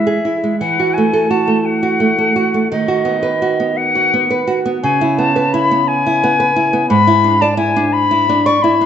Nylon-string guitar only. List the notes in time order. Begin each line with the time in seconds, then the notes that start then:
Already playing: E3 G#3
0.07 G#4
0.25 E4
0.44 G#3
0.61 E3
0.80 F#4
0.98 A3
1.13 A4
1.31 F#4
1.48 A3
1.83 F#4
2.00 A3
2.18 A4
2.36 F#4
2.54 A3
2.72 D#3
2.88 F#4
3.05 B3
3.23 B4
3.42 F#4
3.60 B3
3.95 F#4
4.14 B3
4.31 B4
4.47 F#4
4.66 B3
4.83 C#3
5.01 E4
5.18 B3
5.36 B4
5.54 E4
5.71 B3
6.06 E4
6.24 B3
6.40 B4
6.56 E4
6.73 B3
6.90 G#2
7.07 E4
7.24 D4
7.42 D5
7.57 E4
7.76 D4
8.11 E4
8.29 D4
8.46 D5
8.64 E4
8.81 D4